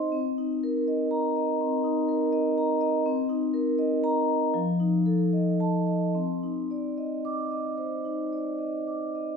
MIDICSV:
0, 0, Header, 1, 2, 480
1, 0, Start_track
1, 0, Tempo, 733496
1, 88, Time_signature, 4, 2, 24, 8
1, 2967, Tempo, 783290
1, 3447, Tempo, 818554
1, 5822, End_track
2, 0, Start_track
2, 0, Title_t, "Vibraphone"
2, 0, Program_c, 0, 11
2, 0, Control_c, 0, 64, 127
2, 0, Note_on_c, 0, 63, 47
2, 0, Note_on_c, 0, 72, 40
2, 0, Note_on_c, 0, 75, 48
2, 0, Note_on_c, 0, 84, 46
2, 78, Note_on_c, 0, 60, 57
2, 85, Note_off_c, 0, 75, 0
2, 99, Control_c, 0, 64, 0
2, 101, Note_off_c, 0, 84, 0
2, 105, Note_off_c, 0, 72, 0
2, 106, Note_off_c, 0, 63, 0
2, 193, Control_c, 0, 64, 127
2, 249, Note_on_c, 0, 63, 43
2, 415, Note_on_c, 0, 70, 49
2, 507, Note_off_c, 0, 63, 0
2, 574, Note_on_c, 0, 75, 49
2, 668, Note_off_c, 0, 70, 0
2, 726, Note_on_c, 0, 82, 60
2, 826, Note_off_c, 0, 75, 0
2, 891, Note_on_c, 0, 75, 44
2, 982, Note_off_c, 0, 82, 0
2, 1017, Note_off_c, 0, 60, 0
2, 1052, Note_on_c, 0, 60, 51
2, 1145, Note_off_c, 0, 75, 0
2, 1204, Note_on_c, 0, 63, 47
2, 1364, Note_on_c, 0, 70, 47
2, 1461, Note_off_c, 0, 63, 0
2, 1521, Note_on_c, 0, 75, 56
2, 1619, Note_off_c, 0, 70, 0
2, 1687, Note_on_c, 0, 82, 55
2, 1776, Note_off_c, 0, 75, 0
2, 1838, Note_on_c, 0, 75, 54
2, 1937, Note_off_c, 0, 82, 0
2, 1974, Note_off_c, 0, 60, 0
2, 1997, Note_off_c, 0, 75, 0
2, 2001, Note_on_c, 0, 60, 63
2, 2007, Control_c, 0, 64, 0
2, 2108, Control_c, 0, 64, 127
2, 2157, Note_on_c, 0, 63, 50
2, 2314, Note_on_c, 0, 70, 49
2, 2412, Note_off_c, 0, 63, 0
2, 2477, Note_on_c, 0, 75, 54
2, 2572, Note_off_c, 0, 70, 0
2, 2642, Note_on_c, 0, 82, 73
2, 2736, Note_off_c, 0, 75, 0
2, 2806, Note_on_c, 0, 75, 48
2, 2902, Note_off_c, 0, 82, 0
2, 2941, Note_off_c, 0, 60, 0
2, 2968, Note_off_c, 0, 75, 0
2, 2970, Note_on_c, 0, 53, 63
2, 2978, Control_c, 0, 64, 0
2, 3097, Control_c, 0, 64, 127
2, 3130, Note_on_c, 0, 63, 46
2, 3290, Note_on_c, 0, 69, 48
2, 3384, Note_off_c, 0, 63, 0
2, 3454, Note_on_c, 0, 75, 46
2, 3543, Note_off_c, 0, 69, 0
2, 3614, Note_on_c, 0, 81, 57
2, 3703, Note_off_c, 0, 75, 0
2, 3771, Note_on_c, 0, 75, 43
2, 3866, Note_off_c, 0, 81, 0
2, 3905, Note_off_c, 0, 53, 0
2, 3931, Note_off_c, 0, 75, 0
2, 3933, Note_on_c, 0, 60, 51
2, 3938, Control_c, 0, 64, 0
2, 4063, Control_c, 0, 64, 127
2, 4100, Note_on_c, 0, 63, 36
2, 4264, Note_on_c, 0, 74, 38
2, 4357, Note_off_c, 0, 63, 0
2, 4419, Note_on_c, 0, 75, 39
2, 4517, Note_off_c, 0, 74, 0
2, 4580, Note_on_c, 0, 86, 55
2, 4672, Note_off_c, 0, 75, 0
2, 4734, Note_on_c, 0, 75, 36
2, 4830, Note_off_c, 0, 86, 0
2, 4871, Note_off_c, 0, 60, 0
2, 4890, Note_on_c, 0, 72, 36
2, 4987, Note_off_c, 0, 75, 0
2, 5050, Note_on_c, 0, 63, 37
2, 5146, Note_off_c, 0, 72, 0
2, 5212, Note_on_c, 0, 74, 36
2, 5307, Note_off_c, 0, 63, 0
2, 5364, Note_on_c, 0, 75, 38
2, 5468, Note_off_c, 0, 74, 0
2, 5531, Note_on_c, 0, 86, 36
2, 5625, Note_off_c, 0, 75, 0
2, 5696, Note_on_c, 0, 75, 36
2, 5785, Note_off_c, 0, 86, 0
2, 5822, Note_off_c, 0, 75, 0
2, 5822, End_track
0, 0, End_of_file